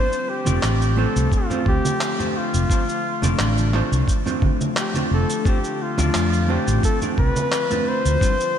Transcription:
0.00 8.18 D3 medium
0.00 8.59 F3 medium
0.00 8.17 A3 medium
0.00 2.67 C4 medium
0.00 8.59 F4 medium
0.00 0.31 C5 loud
0.12 shaker soft
0.29 0.99 G4 loud
0.45 0.57 F1 medium
0.45 0.93 A3 medium
0.45 0.93 C4 medium
0.45 0.93 D4 medium
0.45 0.93 F4 medium
0.45 0.94 D5 loud
0.45 high conga medium
0.45 shaker medium
0.63 1.05 A1 medium
0.63 clap medium
0.63 shaker soft
0.82 shaker soft
0.96 1.45 A3 medium
0.96 1.46 C4 medium
0.96 1.46 D4 medium
0.96 1.46 F4 medium
0.96 1.35 A4 medium
0.96 1.46 C5 loud
1.16 1.26 C2 medium
1.16 shaker medium
1.32 1.67 F4 medium
1.32 kick medium
1.32 shaker soft
1.50 2.15 A3 medium
1.50 2.15 C4 medium
1.50 2.15 D4 medium
1.50 2.15 F4 medium
1.50 2.15 C5 medium
1.50 low conga medium
1.50 shaker soft
1.66 1.78 D2 medium
1.66 2.39 G4 loud
1.66 kick medium
1.85 high conga medium
1.85 shaker medium
2.01 clap loud
2.01 shaker medium
2.19 2.66 A3 medium
2.19 2.66 C4 medium
2.19 2.66 D4 medium
2.19 2.66 F4 medium
2.19 2.67 C5 medium
2.19 low conga medium
2.19 shaker soft
2.37 3.74 F4 medium
2.54 2.64 F1 medium
2.54 shaker medium
2.69 2.82 A3 medium
2.69 2.82 C4 medium
2.69 5.43 D4 medium
2.69 2.82 D4 medium
2.69 2.82 F4 medium
2.69 2.83 C5 loud
2.69 kick loud
2.69 shaker medium
2.89 shaker soft
3.22 3.33 F1 medium
3.22 3.69 A3 medium
3.22 3.69 C4 medium
3.22 3.70 D4 medium
3.22 3.70 F4 medium
3.22 3.70 D5 medium
3.22 high conga medium
3.22 shaker medium
3.39 3.80 A1 medium
3.39 clap loud
3.39 shaker medium
3.58 shaker soft
3.73 4.22 A3 loud
3.73 4.22 C4 medium
3.73 4.22 D4 medium
3.73 4.22 F4 medium
3.73 4.23 C5 loud
3.73 clap soft
3.92 4.02 C2 medium
3.92 shaker medium
4.08 kick medium
4.08 shaker medium
4.25 4.90 A3 medium
4.25 4.91 C4 medium
4.25 4.91 D4 medium
4.25 4.91 F4 medium
4.25 4.91 C5 medium
4.25 low conga medium
4.25 shaker soft
4.42 kick loud
4.42 high conga loud
4.61 high conga medium
4.61 shaker medium
4.77 4.94 G4 medium
4.77 clap loud
4.77 shaker medium
4.94 5.42 A3 medium
4.94 5.42 C4 medium
4.94 5.42 D4 medium
4.94 5.42 F4 medium
4.94 5.42 C5 medium
4.94 high conga medium
4.94 low conga medium
4.94 shaker soft
5.11 5.22 F1 medium
5.11 5.49 A4 medium
5.30 shaker medium
5.45 5.57 A3 medium
5.45 5.57 C4 medium
5.45 8.59 C4 medium
5.45 5.58 D4 medium
5.45 5.58 F4 medium
5.45 5.84 G4 medium
5.45 5.58 C5 loud
5.45 kick loud
5.45 shaker medium
5.64 shaker soft
5.82 6.52 F4 medium
5.97 6.09 D2 medium
5.97 6.45 A3 medium
5.97 6.45 C4 medium
5.97 6.45 D4 medium
5.97 6.45 F4 medium
5.97 6.46 D5 loud
5.97 high conga medium
5.97 shaker medium
6.14 6.56 F2 medium
6.14 clap medium
6.14 shaker medium
6.33 shaker soft
6.48 6.97 A3 loud
6.48 6.97 C4 medium
6.48 6.98 D4 medium
6.48 6.98 F4 medium
6.48 6.84 G4 medium
6.48 6.98 C5 loud
6.67 6.77 A1 medium
6.67 shaker medium
6.83 7.00 A4 medium
6.83 kick loud
6.83 shaker soft
7.01 7.66 A3 medium
7.01 7.66 C4 medium
7.01 7.67 D4 medium
7.01 7.67 F4 medium
7.01 7.67 D5 medium
7.01 low conga medium
7.01 shaker soft
7.18 7.29 C2 medium
7.18 7.90 B4 loud
7.18 kick loud
7.36 high conga loud
7.36 shaker medium
7.52 clap loud
7.52 shaker medium
7.70 8.17 A3 medium
7.70 8.18 C4 medium
7.70 8.18 D4 medium
7.70 8.18 F4 medium
7.70 8.18 C5 medium
7.70 low conga medium
7.70 shaker soft
7.88 8.59 C5 loud
8.05 8.15 D2 medium
8.05 shaker medium
8.20 8.59 D3 medium
8.20 8.33 G3 medium
8.20 8.59 G3 medium
8.20 8.33 C4 medium
8.20 8.34 D4 medium
8.20 8.34 F4 medium
8.20 8.34 C5 medium
8.20 kick loud
8.20 shaker medium
8.40 shaker soft

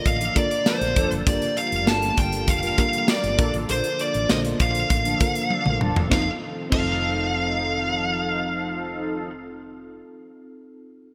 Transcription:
0.00 0.19 D3 medium
0.00 6.08 D3 medium
0.00 1.23 F3 medium
0.00 0.35 A#3 medium
0.00 3.35 A#3 medium
0.00 0.35 D4 medium
0.00 0.36 F4 medium
0.00 6.07 F4 medium
0.00 0.36 A4 medium
0.00 0.36 A#4 medium
0.06 0.28 A1 loud
0.06 0.37 F5 loud
0.06 kick medium
0.06 closed hi-hat medium
0.20 0.33 F3 medium
0.20 0.33 D4 medium
0.20 0.33 A4 loud
0.20 closed hi-hat medium
0.35 1.10 A#3 medium
0.35 1.10 D4 medium
0.35 1.10 F4 medium
0.35 1.10 A4 medium
0.35 1.10 A#4 medium
0.35 0.68 D5 medium
0.35 kick medium
0.35 closed hi-hat medium
0.51 closed hi-hat medium
0.66 0.79 F3 loud
0.66 0.79 D4 loud
0.66 0.79 A4 loud
0.66 1.09 C5 medium
0.66 snare loud
0.66 tambourine medium
0.81 0.93 A#1 medium
0.81 closed hi-hat medium
0.96 1.08 F1 loud
0.96 1.22 F3 loud
0.96 1.22 D4 loud
0.96 1.22 A4 loud
0.96 kick loud
0.96 closed hi-hat medium
1.11 1.23 F#1 medium
1.11 closed hi-hat medium
1.26 1.38 G1 loud
1.26 6.07 F3 medium
1.26 3.37 G3 medium
1.26 1.76 A#3 medium
1.26 1.76 D4 medium
1.26 1.76 F4 medium
1.26 1.76 G4 medium
1.26 1.34 A4 medium
1.26 1.57 D5 loud
1.26 kick loud
1.26 closed hi-hat medium
1.34 1.80 A#4 medium
1.42 closed hi-hat medium
1.57 1.86 F5 loud
1.57 closed hi-hat medium
1.72 1.87 F1 medium
1.72 closed hi-hat soft
1.87 2.10 G1 loud
1.87 2.61 A#3 medium
1.87 2.61 D4 medium
1.87 2.61 F4 medium
1.87 2.62 G4 medium
1.87 2.62 A4 medium
1.87 2.16 A5 loud
1.87 snare loud
1.87 tambourine medium
2.02 closed hi-hat medium
2.17 2.48 G1 loud
2.17 2.49 G5 loud
2.17 kick medium
2.17 closed hi-hat medium
2.32 closed hi-hat medium
2.48 2.71 F1 loud
2.48 2.79 F5 loud
2.48 kick medium
2.48 closed hi-hat medium
2.63 2.76 G3 medium
2.63 2.76 F4 medium
2.63 2.76 A#4 loud
2.63 closed hi-hat medium
2.78 3.37 A#3 medium
2.78 3.37 D4 medium
2.78 3.37 F4 medium
2.78 3.39 G4 medium
2.78 3.38 A#4 medium
2.78 3.07 F5 loud
2.78 kick medium
2.78 closed hi-hat medium
2.93 closed hi-hat medium
3.08 3.21 G3 loud
3.08 3.21 F4 loud
3.08 3.21 A#4 loud
3.08 3.51 D5 loud
3.08 snare loud
3.08 tambourine medium
3.24 3.35 G1 medium
3.24 closed hi-hat medium
3.38 3.50 A#1 loud
3.38 3.64 F3 loud
3.38 4.13 A#3 medium
3.38 6.09 A#3 medium
3.38 4.13 D4 medium
3.38 3.64 D4 loud
3.38 4.13 F4 medium
3.38 3.64 A4 loud
3.38 4.13 A4 medium
3.38 4.13 A#4 loud
3.38 kick loud
3.38 closed hi-hat medium
3.54 3.65 A1 medium
3.54 closed hi-hat medium
3.69 3.81 A#1 loud
3.69 3.98 C5 loud
3.69 closed hi-hat medium
3.84 closed hi-hat medium
3.99 4.30 D5 medium
3.99 closed hi-hat medium
4.14 4.26 A1 medium
4.14 closed hi-hat soft
4.29 4.53 A#1 loud
4.29 5.04 D3 medium
4.29 5.04 A#3 medium
4.29 5.04 F4 medium
4.29 5.04 A4 medium
4.29 5.04 C5 medium
4.29 4.39 D#5 loud
4.29 snare loud
4.29 tambourine medium
4.45 closed hi-hat medium
4.60 4.83 A#1 loud
4.60 5.78 F5 loud
4.60 kick medium
4.60 closed hi-hat medium
4.75 closed hi-hat medium
4.90 5.13 A1 loud
4.90 kick medium
4.90 closed hi-hat medium
5.05 5.18 F3 medium
5.05 5.18 D4 medium
5.05 5.18 A4 medium
5.05 closed hi-hat medium
5.20 5.94 A#3 medium
5.20 5.95 D4 medium
5.20 5.95 F4 medium
5.20 5.95 A4 medium
5.20 5.95 A#4 medium
5.20 kick loud
5.20 closed hi-hat medium
5.35 closed hi-hat medium
5.50 5.64 F3 loud
5.50 5.64 D4 loud
5.50 5.64 A4 loud
5.50 high tom medium
5.66 5.77 A#1 medium
5.66 mid tom medium
5.81 5.93 D#1 loud
5.81 6.07 F3 loud
5.81 6.07 D4 loud
5.81 6.07 A4 loud
5.81 mid tom loud
5.96 6.08 E1 medium
5.96 floor tom loud
6.09 6.28 F1 loud
6.09 9.30 D#3 medium
6.09 6.28 F3 medium
6.09 9.30 F3 medium
6.09 9.30 A3 medium
6.09 6.27 C4 medium
6.09 9.30 C4 medium
6.09 6.28 D#4 medium
6.09 6.28 D#4 loud
6.09 9.30 F4 medium
6.09 6.29 F4 medium
6.09 6.28 A4 loud
6.09 6.29 F5 medium
6.09 kick loud
6.09 snare medium
6.14 6.30 A4 medium
6.70 10.00 F1 loud
6.70 9.30 F3 loud
6.70 9.99 C4 medium
6.70 10.00 D#4 medium
6.70 9.30 D#4 loud
6.70 10.00 F4 medium
6.70 9.30 A4 loud
6.70 9.30 F5 medium
6.70 kick loud
6.70 crash medium
6.75 10.01 A4 loud

